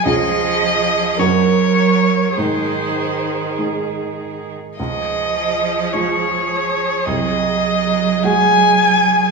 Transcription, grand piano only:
X:1
M:6/8
L:1/8
Q:3/8=52
K:Db
V:1 name="Grand piano"
[D,,DFA]3 [G,,DGB]3 | A,,3 [A,EA]3 | D,,3 [A,FA]3 | C,,3 [A,GA]3 |]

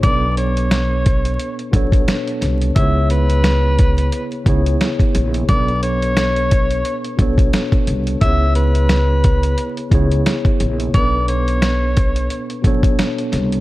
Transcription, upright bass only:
X:1
M:4/4
L:1/8
Q:"Swing 16ths" 1/4=88
K:Bdor
V:1 name="Upright bass" clef=bass
B,,,4 z B,,, z =C,, | C,,4 z C,, z ^A,,, | B,,,4 z B,,, z =C,, | C,,4 z C,, z ^A,,, |
B,,,4 z B,,, z =C,, |]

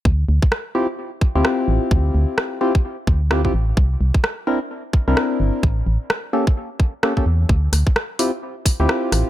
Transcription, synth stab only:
X:1
M:4/4
L:1/16
Q:"Swing 16ths" 1/4=129
K:Dm
V:1 name="Synth stab"
z6 [CEFG] z4 [CEFG]4- [CEFG]- | [CEFG]6 [CEFG] z4 z [CEFG] [CEFG] z2 | z6 [CDEB] z4 [CDEB]4- [CDEB] | z6 [B,^CGA] z4 z [B,CGA] [B,CGA] z2 |
z6 [CEFG] z4 [CEFG]4- [CEFG] |]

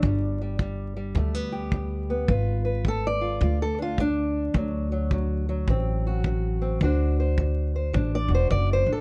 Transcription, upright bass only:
X:1
M:4/4
L:1/8
Q:"Swing" 1/4=106
K:Dmix
V:1 name="Upright bass" clef=bass
G,,,4 D,,4 | ^G,,,4 D,,4 | D,,4 A,,,4 | D,,4 A,,, E,,, F,,, A,,, |]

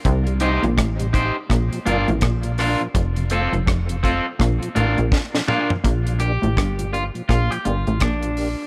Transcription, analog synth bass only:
X:1
M:4/4
L:1/16
Q:"Swing 16ths" 1/4=83
K:Bb
V:1 name="Analog synth bass" clef=bass
C,,3 B,,, A,,,3 z B,,, z G,,, A,,, B,,,3 z | F,,,3 F,,, F,,,3 z B,,, z A,,, B,,, z4 | B,,,3 A,,, G,,,3 z B,,, z G,,, A,,, B,,,3 z |]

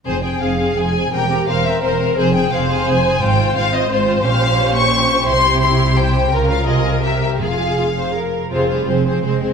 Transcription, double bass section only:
X:1
M:3/4
L:1/8
Q:1/4=171
K:Fm
V:1 name="Double bass section" clef=bass
F,,,2 F,,,2 F,,,2 | =E,,,2 E,,,2 E,,,2 | F,,,2 F,,,2 F,,,2 | A,,,2 A,,,2 A,,,2 |
B,,,6 | C,,6 | D,,2 C,,4 | F,,,4- F,,, z |
F,,,2 F,,,2 F,,,2 |]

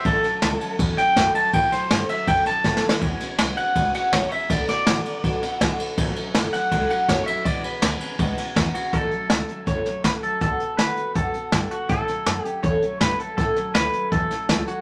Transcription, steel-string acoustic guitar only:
X:1
M:4/4
L:1/8
Q:1/4=162
K:A
V:1 name="Steel-string acoustic guitar"
[A,,E,F,A,CA] [F,A,CA] [F,A,CA] [F,A,CA] [A,,E,F,A,CA] [F,A,CA] [F,A,CA] [F,A,CA] | [A,,E,F,A,CA] [F,A,CA] [F,A,CA] [F,A,CA] [A,,E,F,A,CA] [F,A,CA] [F,A,CA] [F,A,CA] | [E,G,B,CG] [B,CG] [G,B,CG] [B,CG] [E,G,B,CG] [B,CG] G [B,CG] | [D,F,B,FA] [B,FA] [F,B,FA] [B,FA] [D,F,B,FA] [B,FA] [F,B,FA] [B,FA] |
[A,,E,F,A,CA] [F,A,CA] [F,A,CA] [F,A,CA] [A,,E,F,A,CA] [F,A,CA] [F,A,CA] [F,A,CA] | [E,G,B,CG] [B,CG] [G,B,CG] [B,CG] [E,G,B,CG] [B,CG] [G,B,CG] [B,CG] | [A,,E,F,A,CA] [F,A,CA] A [F,A,CA] [A,,E,F,A,CA] [F,A,CA] [F,A,CA] [F,A,CA] | [D,F,B,FA] [B,FA] [F,B,FA] [B,FA] [D,F,B,FA] [B,FA] [B,A] [B,FA] |
[A,,E,F,A,CA] [F,A,CA] [F,A,CA] [F,A,CA] [A,,E,F,A,CA] [F,A,CA] [F,A,CA] [F,A,CA] | [A,,E,F,A,CA] [F,A,CA] [F,A,CA] [F,A,CA] [A,,E,F,A,CA] [F,A,CA] [F,A,CA] [F,A,CA] |]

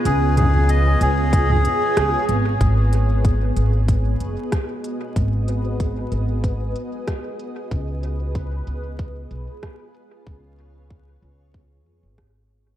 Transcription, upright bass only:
X:1
M:4/4
L:1/16
Q:1/4=94
K:G#dor
V:1 name="Upright bass" clef=bass
C,,6 C,,4 z2 C,, z G,,,2 | G,,,6 G,,,4 F,,, z4 z | G,,,6 G,,,4 z6 | C,,6 C,,4 B,,, z4 z |
C,,6 C,,4 E,, G,,,4- G,,, |]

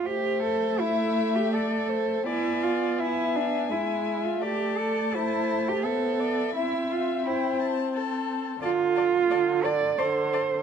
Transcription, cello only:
X:1
M:3/4
L:1/16
Q:1/4=84
K:Am
V:1 name="Cello"
G2 A2 E3 G A4 | E2 F2 E2 D2 E3 F | G2 A2 E3 G A4 | E2 F2 E2 z6 |
F6 d2 c4 |]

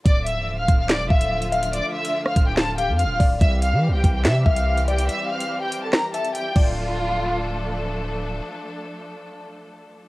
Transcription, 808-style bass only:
X:1
M:4/4
L:1/16
Q:1/4=143
K:Dm
V:1 name="808-style bass" clef=bass
D,,,3 C,,,3/2 D,,,3/2 D,,,3 E,,, D,,,6- | D,,, z4 z D,,,4- D,,, F,,3/2 D,,,3/2 D,,,2 | C,,3 E,3/2 C,,3/2 C,,2 C,2 C,,6 | z12 z2 D,,,2- |
D,,,16 | z16 |]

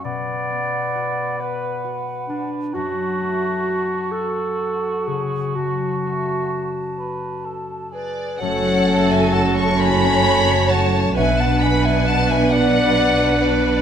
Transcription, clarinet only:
X:1
M:6/8
L:1/8
Q:3/8=44
K:F#m
V:1 name="Clarinet"
d3 B z D | F3 A2 G | F4- F z | F6 |
D3 D3 |]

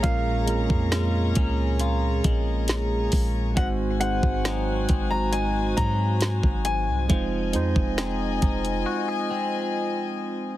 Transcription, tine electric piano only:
X:1
M:4/4
L:1/8
Q:1/4=68
K:Bbm
V:1 name="Tine electric piano"
[A,B,DFB] [A,B,CDFB]3 z4 | [A,CEGc] [A,CEGc]3 z4 | [A,CEFc] [A,CEFc]3 z4 |]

